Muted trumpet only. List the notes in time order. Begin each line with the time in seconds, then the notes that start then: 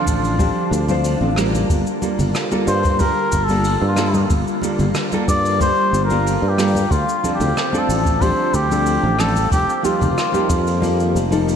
Already playing: F4
2.68 C5
3.00 A#4
3.44 A4
3.88 F4
5.29 D5
5.62 C5
6.05 A#4
6.48 G4
6.91 F4
7.35 G4
7.79 A4
8.21 C5
8.55 G4
9.20 A4
9.52 G4
9.85 F4